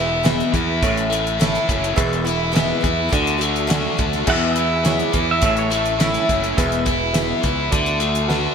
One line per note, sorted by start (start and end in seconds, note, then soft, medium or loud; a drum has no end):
0.00 0.41 E1 loud
0.00 0.81 E2 medium
0.00 0.23 E3 medium
0.00 0.23 G#3 medium
0.00 0.23 B3 medium
0.00 0.81 B3 medium
0.00 0.23 E4 medium
0.00 0.80 E4 medium
0.00 0.12 G#4 loud
0.00 0.81 G#4 medium
0.00 0.12 B4 medium
0.00 0.12 E5 loud
0.23 0.52 E2 medium
0.23 0.52 B2 medium
0.23 0.52 E3 medium
0.23 0.53 G#3 medium
0.23 0.53 B3 medium
0.23 0.53 E4 medium
0.23 0.70 G#4 medium
0.23 0.70 B4 medium
0.23 0.70 E5 loud
0.23 snare loud
0.23 closed hi-hat medium
0.40 closed hi-hat soft
0.54 0.84 E2 loud
0.54 0.82 E3 soft
0.54 0.83 G#3 soft
0.54 0.82 B3 medium
0.54 0.82 E4 medium
0.54 kick medium
0.54 closed hi-hat medium
0.81 1.56 A1 loud
0.81 1.97 A2 medium
0.81 1.11 E3 medium
0.81 1.11 A3 medium
0.81 1.96 C#4 medium
0.81 1.10 C#4 medium
0.81 1.94 E4 medium
0.81 1.09 E4 medium
0.81 1.95 A4 medium
0.81 1.28 A4 medium
0.81 1.28 C#5 medium
0.81 1.28 E5 loud
0.81 kick loud
0.81 closed hi-hat medium
0.97 closed hi-hat soft
1.10 1.39 A3 soft
1.10 1.39 C#4 medium
1.10 1.39 E4 medium
1.10 closed hi-hat medium
1.27 closed hi-hat soft
1.40 1.68 A2 medium
1.40 1.68 E3 medium
1.40 1.68 A3 medium
1.40 1.68 C#4 medium
1.40 1.68 E4 medium
1.40 1.86 A4 medium
1.40 1.86 C#5 medium
1.40 1.86 E5 medium
1.40 snare loud
1.40 closed hi-hat loud
1.55 closed hi-hat soft
1.69 1.93 F#1 medium
1.69 1.96 A3 soft
1.69 1.97 C#4 medium
1.69 1.96 E4 medium
1.69 kick medium
1.69 closed hi-hat medium
1.84 closed hi-hat soft
1.96 2.71 E1 loud
1.96 2.25 E2 medium
1.96 2.25 B2 medium
1.96 2.25 E3 medium
1.96 2.24 G#3 medium
1.96 3.10 B3 medium
1.96 2.23 B3 medium
1.96 3.10 E4 medium
1.96 2.23 E4 medium
1.96 3.10 G#4 medium
1.96 2.43 G#4 loud
1.96 2.42 B4 medium
1.96 2.42 E5 loud
1.96 kick loud
1.96 closed hi-hat loud
2.13 closed hi-hat soft
2.24 2.51 E3 medium
2.24 2.51 G#3 medium
2.24 2.52 B3 medium
2.24 2.52 E4 medium
2.24 closed hi-hat medium
2.52 2.82 E2 medium
2.52 2.82 B2 medium
2.52 2.81 E3 medium
2.52 2.81 G#3 medium
2.52 2.80 B3 medium
2.52 2.79 E4 medium
2.52 3.00 G#4 medium
2.52 3.01 B4 medium
2.52 3.01 E5 medium
2.52 closed hi-hat loud
2.57 snare loud
2.81 3.08 E2 medium
2.81 3.08 E3 soft
2.81 3.09 G#3 soft
2.81 3.10 B3 medium
2.81 3.11 E4 medium
2.81 kick medium
2.81 closed hi-hat medium
3.09 3.39 D3 medium
3.09 3.38 A3 medium
3.09 3.38 D4 medium
3.09 3.37 F#4 medium
3.09 4.26 F#4 medium
3.09 3.58 A4 medium
3.09 3.58 D5 medium
3.09 kick loud
3.09 closed hi-hat medium
3.13 3.87 D2 loud
3.13 4.26 D4 medium
3.13 4.26 A4 medium
3.13 3.58 F#5 loud
3.27 closed hi-hat soft
3.38 3.66 A3 soft
3.38 3.66 D4 medium
3.38 3.67 F#4 medium
3.38 closed hi-hat medium
3.56 closed hi-hat soft
3.67 3.97 D3 medium
3.67 3.97 A3 medium
3.67 3.97 D4 medium
3.67 3.96 F#4 loud
3.67 4.15 A4 medium
3.67 4.16 D5 medium
3.67 4.16 G#5 loud
3.67 closed hi-hat loud
3.71 snare loud
3.97 4.23 D2 medium
3.97 4.27 A3 soft
3.97 4.27 D4 medium
3.97 4.26 F#4 medium
3.97 kick medium
3.97 closed hi-hat medium
4.13 snare soft
4.13 closed hi-hat soft
4.26 4.56 E2 medium
4.26 5.01 E2 loud
4.26 4.56 B2 medium
4.26 4.56 E3 medium
4.26 4.56 G#3 medium
4.26 5.40 B3 medium
4.26 4.56 B3 medium
4.26 5.40 E4 medium
4.26 4.55 E4 medium
4.26 5.40 G#4 medium
4.26 4.73 G#4 loud
4.26 4.73 B4 loud
4.26 4.73 E5 loud
4.26 4.42 F#5 loud
4.26 kick loud
4.26 crash loud
4.44 5.02 E5 medium
4.56 4.84 E3 medium
4.56 4.84 G#3 medium
4.56 4.85 B3 medium
4.56 4.84 E4 medium
4.56 closed hi-hat medium
4.84 5.13 E2 medium
4.84 5.13 B2 medium
4.84 5.13 E3 medium
4.84 5.12 G#3 medium
4.84 5.12 B3 medium
4.84 5.11 E4 medium
4.84 5.30 G#4 medium
4.84 5.30 B4 medium
4.84 5.31 C#5 loud
4.84 snare loud
4.84 closed hi-hat medium
4.99 5.26 D5 medium
4.99 closed hi-hat soft
5.12 5.44 E2 loud
5.12 5.41 E3 soft
5.12 5.42 G#3 medium
5.12 5.42 B3 medium
5.12 5.41 E4 medium
5.12 kick medium
5.12 closed hi-hat medium
5.31 5.43 E5 medium
5.41 6.16 A1 loud
5.41 6.56 A2 medium
5.41 5.71 E3 medium
5.41 5.71 A3 medium
5.41 6.56 C#4 medium
5.41 5.70 C#4 medium
5.41 6.56 E4 medium
5.41 5.69 E4 medium
5.41 6.56 A4 medium
5.41 5.88 A4 medium
5.41 5.88 C#5 medium
5.41 5.88 E5 loud
5.41 kick loud
5.41 closed hi-hat loud
5.46 5.58 E5 medium
5.57 5.72 C#5 medium
5.57 closed hi-hat soft
5.70 6.00 A3 soft
5.70 5.99 C#4 medium
5.70 5.99 E4 medium
5.70 6.00 A4 medium
5.70 closed hi-hat medium
5.86 closed hi-hat soft
5.99 6.28 A2 medium
5.99 6.29 E3 medium
5.99 6.29 A3 medium
5.99 6.29 C#4 medium
5.99 6.55 E4 medium
5.99 6.28 E4 medium
5.99 6.45 A4 medium
5.99 6.46 C#5 medium
5.99 6.45 E5 medium
5.99 snare loud
5.99 closed hi-hat medium
6.14 closed hi-hat soft
6.29 6.54 F#1 medium
6.29 6.58 A3 medium
6.29 6.58 C#4 medium
6.29 6.57 E4 medium
6.29 kick medium
6.29 closed hi-hat medium
6.44 closed hi-hat soft
6.56 7.32 E1 loud
6.56 6.86 E2 medium
6.56 6.86 B2 medium
6.56 6.86 E3 medium
6.56 6.87 G#3 medium
6.56 7.70 B3 medium
6.56 6.86 B3 medium
6.56 7.71 E4 medium
6.56 6.85 E4 medium
6.56 7.71 G#4 medium
6.56 7.03 G#4 loud
6.56 7.03 B4 medium
6.56 7.03 E5 loud
6.56 kick loud
6.56 closed hi-hat loud
6.72 closed hi-hat soft
6.86 7.15 E3 medium
6.86 7.14 G#3 medium
6.86 7.15 B3 medium
6.86 7.15 E4 medium
6.86 kick medium
6.86 snare soft
6.86 closed hi-hat medium
7.13 7.44 E2 medium
7.13 7.44 B2 medium
7.13 7.44 E3 medium
7.13 7.44 G#3 medium
7.13 7.42 B3 loud
7.13 7.42 E4 medium
7.13 7.60 G#4 medium
7.13 7.60 B4 medium
7.13 7.60 E5 medium
7.13 snare loud
7.13 closed hi-hat loud
7.43 7.69 C#2 loud
7.43 7.72 E3 medium
7.43 7.73 G#3 soft
7.43 7.72 B3 medium
7.43 7.72 E4 medium
7.43 kick medium
7.43 closed hi-hat medium
7.71 8.46 D2 loud
7.71 8.01 D3 medium
7.71 8.01 A3 medium
7.71 8.55 D4 medium
7.71 8.00 D4 medium
7.71 8.17 F#4 medium
7.71 8.55 F#4 medium
7.71 7.99 F#4 medium
7.71 8.17 A4 medium
7.71 8.55 A4 medium
7.71 8.17 D5 medium
7.71 kick loud
7.71 closed hi-hat loud
7.86 closed hi-hat soft
7.99 8.29 A3 soft
7.99 8.29 D4 medium
7.99 8.29 F#4 medium
7.99 8.13 F#5 medium
7.99 closed hi-hat medium
8.15 8.28 G#5 medium
8.15 closed hi-hat medium
8.28 8.55 D3 medium
8.28 8.55 A3 medium
8.28 8.55 D4 medium
8.28 8.55 F#4 medium
8.28 8.55 A4 medium
8.28 8.55 B4 medium
8.28 8.55 A5 medium
8.28 snare medium